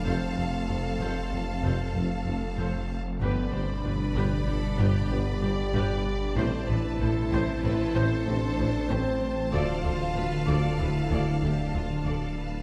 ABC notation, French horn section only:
X:1
M:5/4
L:1/8
Q:1/4=95
K:Am
V:1 name="French horn section"
C8 z2 | D6 G4 | E6 D2 C2 | F4 E2 D4 |]